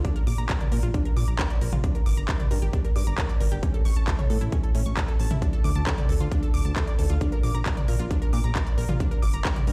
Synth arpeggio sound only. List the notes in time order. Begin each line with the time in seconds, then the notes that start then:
0.05 D4
0.16 A#4
0.27 D6
0.38 A#5
0.49 A#4
0.61 D5
0.72 A#4
0.83 F4
0.94 D4
1.05 A#4
1.16 D6
1.28 A#5
1.39 A#4
1.50 D5
1.61 A#4
1.73 F4
1.84 D4
1.95 A#4
2.06 D6
2.17 A#5
2.29 A#4
2.40 D5
2.51 A#4
2.62 G4
2.73 D4
2.85 A#4
2.96 D6
3.07 A#5
3.18 A#4
3.29 D5
3.41 A#4
3.52 G4
3.63 C#4
3.74 A4
3.85 C#6
3.96 A5
4.08 A4
4.19 C#5
4.30 A4
4.41 E4
4.52 C#4
4.64 A4
4.75 C#4
4.86 C#6
4.97 A4
5.08 A4
5.20 A5
5.31 E4
5.42 D4
5.53 A4
5.64 D6
5.76 A5
5.87 A4
5.98 D5
6.09 A4
6.20 F4
6.32 D4
6.43 A4
6.54 D6
6.65 A5
6.76 A4
6.87 D5
6.99 A4
7.10 F4
7.21 D4
7.32 A#4
7.43 D6
7.55 A#5
7.66 A#4
7.77 D5
7.88 A#4
7.99 F4
8.11 D4
8.22 A#4
8.33 D6
8.44 A#5
8.55 A#4
8.66 D5
8.78 A#4
8.89 F4
9.00 D4
9.11 A#4
9.22 D6
9.34 A#5
9.45 A#4
9.56 D5
9.67 A#4